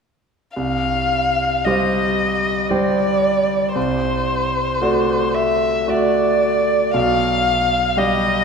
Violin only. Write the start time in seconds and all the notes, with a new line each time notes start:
0.57 F5
1.65 D#5
2.69 D5
3.75 C5
5.34 E5
5.90 D5
6.96 F5
7.98 D#5